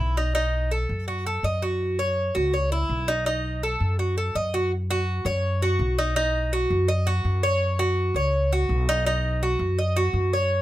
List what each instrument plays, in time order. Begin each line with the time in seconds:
Already playing: cuban tres E4
0.00 upright bass B1
0.17 cuban tres D#4
0.35 cuban tres D#4
0.71 cuban tres A4
0.89 upright bass F#2
1.08 cuban tres F#4
1.27 cuban tres A4
1.43 upright bass F#2, cuban tres D#5
1.62 cuban tres F#4
1.99 cuban tres C#5
2.35 upright bass C#2, cuban tres F#4
2.54 cuban tres C#5
2.72 cuban tres E4
2.89 upright bass B1
3.08 cuban tres D#4
3.26 cuban tres D#4
3.63 cuban tres A4
3.80 upright bass F#2
3.99 cuban tres F#4
4.18 cuban tres A4
4.35 upright bass F#2, cuban tres D#5
4.54 cuban tres F#4
4.91 cuban tres F#4
5.25 upright bass F#2, cuban tres C#5
5.62 cuban tres F#4
5.79 upright bass B1
5.99 cuban tres D#4
6.16 cuban tres D#4
6.53 cuban tres F#4
6.70 upright bass F#2
6.88 cuban tres D#5
7.07 cuban tres F#4
7.25 upright bass F#2
7.43 cuban tres C#5
7.79 cuban tres F#4
8.14 upright bass C#2, cuban tres C#5
8.53 cuban tres F#4
8.69 upright bass B1
8.89 cuban tres D#4
9.06 cuban tres D#4
9.43 cuban tres F#4
9.59 upright bass F#2
9.79 cuban tres D#5
9.97 cuban tres F#4
10.13 upright bass F#2
10.33 cuban tres C#5